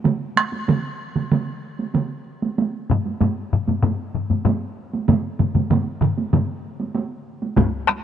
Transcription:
0, 0, Header, 1, 2, 480
1, 0, Start_track
1, 0, Tempo, 626305
1, 42, Time_signature, 4, 2, 24, 8
1, 6160, End_track
2, 0, Start_track
2, 0, Title_t, "Taiko and cinematic ensemble drums"
2, 37, Note_on_c, 9, 48, 70
2, 40, Note_on_c, 9, 47, 97
2, 114, Note_off_c, 9, 48, 0
2, 117, Note_off_c, 9, 47, 0
2, 279, Note_on_c, 9, 48, 51
2, 286, Note_on_c, 9, 37, 71
2, 356, Note_off_c, 9, 48, 0
2, 363, Note_off_c, 9, 37, 0
2, 400, Note_on_c, 9, 48, 54
2, 477, Note_off_c, 9, 48, 0
2, 523, Note_on_c, 9, 48, 68
2, 528, Note_on_c, 9, 47, 110
2, 599, Note_off_c, 9, 48, 0
2, 604, Note_off_c, 9, 47, 0
2, 886, Note_on_c, 9, 47, 73
2, 888, Note_on_c, 9, 48, 54
2, 963, Note_off_c, 9, 47, 0
2, 965, Note_off_c, 9, 48, 0
2, 1009, Note_on_c, 9, 47, 98
2, 1010, Note_on_c, 9, 48, 70
2, 1085, Note_off_c, 9, 47, 0
2, 1086, Note_off_c, 9, 48, 0
2, 1374, Note_on_c, 9, 48, 46
2, 1451, Note_off_c, 9, 48, 0
2, 1492, Note_on_c, 9, 47, 87
2, 1492, Note_on_c, 9, 48, 61
2, 1569, Note_off_c, 9, 47, 0
2, 1569, Note_off_c, 9, 48, 0
2, 1858, Note_on_c, 9, 48, 53
2, 1934, Note_off_c, 9, 48, 0
2, 1979, Note_on_c, 9, 48, 64
2, 2055, Note_off_c, 9, 48, 0
2, 2221, Note_on_c, 9, 45, 101
2, 2221, Note_on_c, 9, 48, 50
2, 2297, Note_off_c, 9, 45, 0
2, 2298, Note_off_c, 9, 48, 0
2, 2341, Note_on_c, 9, 48, 46
2, 2418, Note_off_c, 9, 48, 0
2, 2457, Note_on_c, 9, 48, 69
2, 2459, Note_on_c, 9, 45, 89
2, 2533, Note_off_c, 9, 48, 0
2, 2536, Note_off_c, 9, 45, 0
2, 2704, Note_on_c, 9, 45, 77
2, 2781, Note_off_c, 9, 45, 0
2, 2817, Note_on_c, 9, 48, 59
2, 2822, Note_on_c, 9, 45, 65
2, 2894, Note_off_c, 9, 48, 0
2, 2898, Note_off_c, 9, 45, 0
2, 2937, Note_on_c, 9, 48, 66
2, 2939, Note_on_c, 9, 45, 99
2, 3013, Note_off_c, 9, 48, 0
2, 3015, Note_off_c, 9, 45, 0
2, 3177, Note_on_c, 9, 45, 65
2, 3253, Note_off_c, 9, 45, 0
2, 3295, Note_on_c, 9, 45, 64
2, 3296, Note_on_c, 9, 48, 49
2, 3371, Note_off_c, 9, 45, 0
2, 3373, Note_off_c, 9, 48, 0
2, 3410, Note_on_c, 9, 45, 101
2, 3419, Note_on_c, 9, 48, 77
2, 3486, Note_off_c, 9, 45, 0
2, 3496, Note_off_c, 9, 48, 0
2, 3782, Note_on_c, 9, 48, 54
2, 3858, Note_off_c, 9, 48, 0
2, 3894, Note_on_c, 9, 47, 89
2, 3896, Note_on_c, 9, 45, 85
2, 3900, Note_on_c, 9, 48, 80
2, 3971, Note_off_c, 9, 47, 0
2, 3973, Note_off_c, 9, 45, 0
2, 3977, Note_off_c, 9, 48, 0
2, 4133, Note_on_c, 9, 47, 75
2, 4135, Note_on_c, 9, 45, 67
2, 4139, Note_on_c, 9, 48, 52
2, 4210, Note_off_c, 9, 47, 0
2, 4212, Note_off_c, 9, 45, 0
2, 4216, Note_off_c, 9, 48, 0
2, 4251, Note_on_c, 9, 45, 64
2, 4254, Note_on_c, 9, 47, 69
2, 4263, Note_on_c, 9, 48, 53
2, 4328, Note_off_c, 9, 45, 0
2, 4331, Note_off_c, 9, 47, 0
2, 4339, Note_off_c, 9, 48, 0
2, 4370, Note_on_c, 9, 45, 76
2, 4374, Note_on_c, 9, 47, 104
2, 4384, Note_on_c, 9, 48, 69
2, 4447, Note_off_c, 9, 45, 0
2, 4451, Note_off_c, 9, 47, 0
2, 4461, Note_off_c, 9, 48, 0
2, 4609, Note_on_c, 9, 45, 102
2, 4616, Note_on_c, 9, 47, 93
2, 4685, Note_off_c, 9, 45, 0
2, 4692, Note_off_c, 9, 47, 0
2, 4733, Note_on_c, 9, 48, 57
2, 4810, Note_off_c, 9, 48, 0
2, 4851, Note_on_c, 9, 45, 96
2, 4851, Note_on_c, 9, 48, 68
2, 4852, Note_on_c, 9, 47, 90
2, 4927, Note_off_c, 9, 48, 0
2, 4928, Note_off_c, 9, 45, 0
2, 4929, Note_off_c, 9, 47, 0
2, 5210, Note_on_c, 9, 48, 53
2, 5286, Note_off_c, 9, 48, 0
2, 5329, Note_on_c, 9, 48, 67
2, 5406, Note_off_c, 9, 48, 0
2, 5686, Note_on_c, 9, 48, 50
2, 5763, Note_off_c, 9, 48, 0
2, 5801, Note_on_c, 9, 45, 92
2, 5805, Note_on_c, 9, 41, 106
2, 5807, Note_on_c, 9, 48, 65
2, 5878, Note_off_c, 9, 45, 0
2, 5881, Note_off_c, 9, 41, 0
2, 5883, Note_off_c, 9, 48, 0
2, 6038, Note_on_c, 9, 37, 65
2, 6046, Note_on_c, 9, 48, 46
2, 6115, Note_off_c, 9, 37, 0
2, 6123, Note_off_c, 9, 48, 0
2, 6160, End_track
0, 0, End_of_file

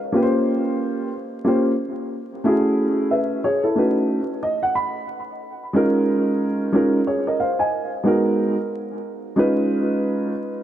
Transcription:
0, 0, Header, 1, 2, 480
1, 0, Start_track
1, 0, Tempo, 659341
1, 1786, Time_signature, 4, 2, 24, 8
1, 7740, End_track
2, 0, Start_track
2, 0, Title_t, "Upright piano"
2, 0, Program_c, 0, 0
2, 90, Note_on_c, 0, 58, 66
2, 95, Note_on_c, 0, 61, 60
2, 102, Note_on_c, 0, 65, 64
2, 109, Note_on_c, 0, 67, 60
2, 114, Note_on_c, 0, 71, 69
2, 162, Note_on_c, 0, 72, 76
2, 167, Note_off_c, 0, 71, 0
2, 779, Note_off_c, 0, 58, 0
2, 782, Note_off_c, 0, 61, 0
2, 785, Note_off_c, 0, 65, 0
2, 789, Note_off_c, 0, 67, 0
2, 815, Note_off_c, 0, 72, 0
2, 1052, Note_on_c, 0, 58, 67
2, 1056, Note_on_c, 0, 61, 62
2, 1063, Note_on_c, 0, 65, 62
2, 1068, Note_on_c, 0, 67, 59
2, 1076, Note_on_c, 0, 72, 70
2, 1241, Note_off_c, 0, 58, 0
2, 1243, Note_off_c, 0, 61, 0
2, 1247, Note_off_c, 0, 65, 0
2, 1249, Note_off_c, 0, 67, 0
2, 1253, Note_off_c, 0, 72, 0
2, 1776, Note_on_c, 0, 57, 70
2, 1782, Note_on_c, 0, 61, 67
2, 1788, Note_on_c, 0, 64, 73
2, 1793, Note_on_c, 0, 66, 62
2, 1799, Note_on_c, 0, 68, 76
2, 2264, Note_on_c, 0, 76, 59
2, 2267, Note_off_c, 0, 64, 0
2, 2269, Note_on_c, 0, 71, 54
2, 2270, Note_off_c, 0, 66, 0
2, 2273, Note_off_c, 0, 68, 0
2, 2462, Note_off_c, 0, 57, 0
2, 2465, Note_off_c, 0, 61, 0
2, 2493, Note_off_c, 0, 76, 0
2, 2496, Note_off_c, 0, 71, 0
2, 2506, Note_on_c, 0, 73, 68
2, 2510, Note_on_c, 0, 68, 58
2, 2642, Note_off_c, 0, 73, 0
2, 2644, Note_off_c, 0, 68, 0
2, 2647, Note_on_c, 0, 69, 55
2, 2653, Note_on_c, 0, 64, 51
2, 2733, Note_on_c, 0, 57, 60
2, 2739, Note_on_c, 0, 61, 57
2, 2746, Note_on_c, 0, 63, 54
2, 2750, Note_on_c, 0, 66, 60
2, 2755, Note_on_c, 0, 71, 62
2, 2876, Note_off_c, 0, 69, 0
2, 2879, Note_off_c, 0, 64, 0
2, 3037, Note_off_c, 0, 57, 0
2, 3040, Note_off_c, 0, 61, 0
2, 3043, Note_off_c, 0, 63, 0
2, 3045, Note_off_c, 0, 66, 0
2, 3047, Note_off_c, 0, 71, 0
2, 3223, Note_on_c, 0, 75, 69
2, 3357, Note_off_c, 0, 75, 0
2, 3368, Note_on_c, 0, 78, 69
2, 3459, Note_off_c, 0, 78, 0
2, 3461, Note_on_c, 0, 83, 65
2, 3687, Note_off_c, 0, 83, 0
2, 4173, Note_on_c, 0, 56, 74
2, 4179, Note_on_c, 0, 61, 73
2, 4186, Note_on_c, 0, 63, 63
2, 4191, Note_on_c, 0, 65, 69
2, 4196, Note_on_c, 0, 70, 78
2, 4861, Note_off_c, 0, 56, 0
2, 4864, Note_off_c, 0, 61, 0
2, 4867, Note_off_c, 0, 63, 0
2, 4870, Note_off_c, 0, 65, 0
2, 4872, Note_off_c, 0, 70, 0
2, 4895, Note_on_c, 0, 56, 68
2, 4900, Note_on_c, 0, 61, 72
2, 4907, Note_on_c, 0, 63, 68
2, 4911, Note_on_c, 0, 65, 67
2, 4918, Note_on_c, 0, 70, 81
2, 5083, Note_off_c, 0, 56, 0
2, 5085, Note_off_c, 0, 61, 0
2, 5088, Note_off_c, 0, 63, 0
2, 5090, Note_off_c, 0, 65, 0
2, 5094, Note_off_c, 0, 70, 0
2, 5148, Note_on_c, 0, 73, 60
2, 5154, Note_on_c, 0, 68, 52
2, 5283, Note_off_c, 0, 73, 0
2, 5286, Note_off_c, 0, 68, 0
2, 5294, Note_on_c, 0, 75, 67
2, 5298, Note_on_c, 0, 70, 56
2, 5384, Note_off_c, 0, 75, 0
2, 5386, Note_off_c, 0, 70, 0
2, 5386, Note_on_c, 0, 77, 58
2, 5392, Note_on_c, 0, 72, 55
2, 5522, Note_off_c, 0, 77, 0
2, 5525, Note_off_c, 0, 72, 0
2, 5528, Note_on_c, 0, 80, 58
2, 5530, Note_on_c, 0, 75, 54
2, 5757, Note_off_c, 0, 80, 0
2, 5758, Note_off_c, 0, 75, 0
2, 5850, Note_on_c, 0, 56, 73
2, 5856, Note_on_c, 0, 59, 58
2, 5864, Note_on_c, 0, 63, 65
2, 5870, Note_on_c, 0, 66, 68
2, 5876, Note_on_c, 0, 70, 82
2, 6213, Note_off_c, 0, 56, 0
2, 6216, Note_off_c, 0, 59, 0
2, 6219, Note_off_c, 0, 63, 0
2, 6222, Note_off_c, 0, 66, 0
2, 6226, Note_off_c, 0, 70, 0
2, 6813, Note_on_c, 0, 56, 71
2, 6817, Note_on_c, 0, 61, 73
2, 6823, Note_on_c, 0, 63, 71
2, 6832, Note_on_c, 0, 65, 71
2, 6836, Note_on_c, 0, 71, 85
2, 7501, Note_off_c, 0, 56, 0
2, 7503, Note_off_c, 0, 61, 0
2, 7506, Note_off_c, 0, 63, 0
2, 7510, Note_off_c, 0, 65, 0
2, 7513, Note_off_c, 0, 71, 0
2, 7740, End_track
0, 0, End_of_file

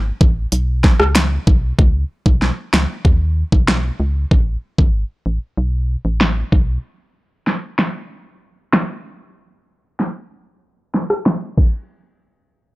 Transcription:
0, 0, Header, 1, 3, 480
1, 0, Start_track
1, 0, Tempo, 631579
1, 1357, Time_signature, 4, 2, 24, 8
1, 9691, End_track
2, 0, Start_track
2, 0, Title_t, "FM bass"
2, 0, Program_c, 0, 39
2, 0, Note_on_c, 0, 32, 91
2, 91, Note_off_c, 0, 32, 0
2, 158, Note_on_c, 0, 33, 92
2, 354, Note_off_c, 0, 33, 0
2, 397, Note_on_c, 0, 35, 99
2, 691, Note_off_c, 0, 35, 0
2, 757, Note_on_c, 0, 37, 92
2, 1052, Note_off_c, 0, 37, 0
2, 1118, Note_on_c, 0, 35, 93
2, 1314, Note_off_c, 0, 35, 0
2, 1358, Note_on_c, 0, 37, 110
2, 1554, Note_off_c, 0, 37, 0
2, 1716, Note_on_c, 0, 35, 94
2, 1913, Note_off_c, 0, 35, 0
2, 2079, Note_on_c, 0, 37, 99
2, 2176, Note_off_c, 0, 37, 0
2, 2317, Note_on_c, 0, 39, 91
2, 2611, Note_off_c, 0, 39, 0
2, 2678, Note_on_c, 0, 35, 94
2, 2972, Note_off_c, 0, 35, 0
2, 3037, Note_on_c, 0, 37, 96
2, 3233, Note_off_c, 0, 37, 0
2, 3277, Note_on_c, 0, 33, 99
2, 3474, Note_off_c, 0, 33, 0
2, 3636, Note_on_c, 0, 32, 97
2, 3833, Note_off_c, 0, 32, 0
2, 3997, Note_on_c, 0, 33, 89
2, 4095, Note_off_c, 0, 33, 0
2, 4237, Note_on_c, 0, 35, 100
2, 4531, Note_off_c, 0, 35, 0
2, 4597, Note_on_c, 0, 33, 99
2, 4891, Note_off_c, 0, 33, 0
2, 4958, Note_on_c, 0, 35, 95
2, 5154, Note_off_c, 0, 35, 0
2, 9691, End_track
3, 0, Start_track
3, 0, Title_t, "Drums"
3, 158, Note_on_c, 9, 36, 105
3, 234, Note_off_c, 9, 36, 0
3, 396, Note_on_c, 9, 42, 80
3, 472, Note_off_c, 9, 42, 0
3, 638, Note_on_c, 9, 36, 94
3, 638, Note_on_c, 9, 38, 71
3, 714, Note_off_c, 9, 36, 0
3, 714, Note_off_c, 9, 38, 0
3, 757, Note_on_c, 9, 37, 96
3, 833, Note_off_c, 9, 37, 0
3, 876, Note_on_c, 9, 42, 77
3, 878, Note_on_c, 9, 26, 105
3, 878, Note_on_c, 9, 38, 125
3, 952, Note_off_c, 9, 42, 0
3, 954, Note_off_c, 9, 26, 0
3, 954, Note_off_c, 9, 38, 0
3, 1118, Note_on_c, 9, 36, 97
3, 1194, Note_off_c, 9, 36, 0
3, 1358, Note_on_c, 9, 36, 119
3, 1434, Note_off_c, 9, 36, 0
3, 1716, Note_on_c, 9, 36, 86
3, 1792, Note_off_c, 9, 36, 0
3, 1838, Note_on_c, 9, 38, 64
3, 1914, Note_off_c, 9, 38, 0
3, 2079, Note_on_c, 9, 26, 85
3, 2079, Note_on_c, 9, 38, 109
3, 2155, Note_off_c, 9, 26, 0
3, 2155, Note_off_c, 9, 38, 0
3, 2317, Note_on_c, 9, 36, 91
3, 2393, Note_off_c, 9, 36, 0
3, 2678, Note_on_c, 9, 36, 82
3, 2754, Note_off_c, 9, 36, 0
3, 2798, Note_on_c, 9, 38, 119
3, 2799, Note_on_c, 9, 26, 96
3, 2874, Note_off_c, 9, 38, 0
3, 2875, Note_off_c, 9, 26, 0
3, 3277, Note_on_c, 9, 36, 112
3, 3353, Note_off_c, 9, 36, 0
3, 3636, Note_on_c, 9, 36, 93
3, 3712, Note_off_c, 9, 36, 0
3, 4717, Note_on_c, 9, 38, 116
3, 4718, Note_on_c, 9, 26, 95
3, 4793, Note_off_c, 9, 38, 0
3, 4794, Note_off_c, 9, 26, 0
3, 4958, Note_on_c, 9, 36, 88
3, 5034, Note_off_c, 9, 36, 0
3, 5677, Note_on_c, 9, 38, 66
3, 5753, Note_off_c, 9, 38, 0
3, 5918, Note_on_c, 9, 26, 86
3, 5918, Note_on_c, 9, 38, 103
3, 5994, Note_off_c, 9, 26, 0
3, 5994, Note_off_c, 9, 38, 0
3, 6637, Note_on_c, 9, 38, 114
3, 6638, Note_on_c, 9, 26, 101
3, 6713, Note_off_c, 9, 38, 0
3, 6714, Note_off_c, 9, 26, 0
3, 7598, Note_on_c, 9, 38, 63
3, 7674, Note_off_c, 9, 38, 0
3, 8317, Note_on_c, 9, 38, 68
3, 8393, Note_off_c, 9, 38, 0
3, 8436, Note_on_c, 9, 37, 88
3, 8512, Note_off_c, 9, 37, 0
3, 8558, Note_on_c, 9, 38, 117
3, 8559, Note_on_c, 9, 26, 92
3, 8634, Note_off_c, 9, 38, 0
3, 8635, Note_off_c, 9, 26, 0
3, 8797, Note_on_c, 9, 36, 102
3, 8797, Note_on_c, 9, 49, 84
3, 8873, Note_off_c, 9, 36, 0
3, 8873, Note_off_c, 9, 49, 0
3, 9691, End_track
0, 0, End_of_file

